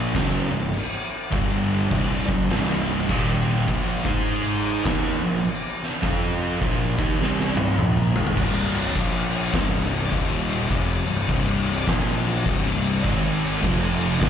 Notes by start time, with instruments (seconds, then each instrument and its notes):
Already playing: fingered electric bass A#1, distorted electric guitar A#2 F3 A#3
0.14 fingered electric bass F#1, distorted electric guitar F#2 C#3 F#3, kick, snare, crash
0.51 fingered electric bass C1, distorted electric guitar C2 G2
0.74 crash
1.31 fingered electric bass G1, distorted electric guitar G2 D3 G3, kick, crash
1.90 fingered electric bass C1, distorted electric guitar C2 G2 C3, kick, crash
2.28 fingered electric bass F#1, distorted electric guitar F#2 C#3 F#3, kick
2.49 fingered electric bass C1, distorted electric guitar C2 G2 C3, snare, crash
3.08 fingered electric bass D#1, distorted electric guitar D#2 A#2 D#3, kick, crash
3.48 snare
3.67 fingered electric bass A#1, distorted electric guitar A#2 F3 A#3, kick, crash
4.04 fingered electric bass G#2, distorted electric guitar G#3 D#4 G#4, kick
4.27 crash
4.84 fingered electric bass D#2, distorted electric guitar D#3 A#3 D#4, kick, snare, crash
5.22 fingered electric bass A#1, distorted electric guitar A#2 F3
5.44 crash
5.83 snare
6.02 fingered electric bass F2, distorted electric guitar F3 C4 F4, kick, crash
6.61 fingered electric bass A#1, distorted electric guitar A#2 F3 A#3, kick, crash
6.98 fingered electric bass D#2, distorted electric guitar D#3 A#3 D#4, kick
7.20 fingered electric bass C2, distorted electric guitar C3 G3 C4, snare
7.40 snare
7.57 high tom
7.68 high tom
7.77 fingered electric bass A#1, distorted electric guitar A#2 F3 A#3, mid tom
7.97 mid tom
8.14 fingered electric bass G#1, distorted electric guitar G#2 D#3 G#3, floor tom
8.27 floor tom
8.36 fingered electric bass C1, distorted electric guitar C2 G2 C3, kick, crash
8.74 crash
8.94 fingered electric bass A#1, distorted electric guitar A#2 F3 A#3, kick, crash
9.32 crash
9.54 fingered electric bass C1, distorted electric guitar C2 G2 C3, kick, snare, crash
9.91 crash
10.12 fingered electric bass D#1, distorted electric guitar D#2 A#2 D#3, kick, crash
10.49 crash
10.70 fingered electric bass F1, distorted electric guitar F2 C3 F3, kick, crash
11.07 fingered electric bass C1, distorted electric guitar C2 G2, crash
11.28 fingered electric bass C1, distorted electric guitar C2 G2 C3, kick, crash
11.66 crash
11.87 fingered electric bass A#1, distorted electric guitar A#2 F3 A#3, kick, snare, crash
12.25 crash
12.46 fingered electric bass C1, distorted electric guitar C2 G2 C3, kick, crash
12.65 snare
12.83 crash
13.04 fingered electric bass G#1, distorted electric guitar G#2 D#3 G#3, kick, crash
13.42 crash
13.63 fingered electric bass F1, distorted electric guitar F2 C3 F3, kick, crash
14.00 crash
14.21 fingered electric bass G#1, distorted electric guitar G#2 D#3 G#3, kick, snare, crash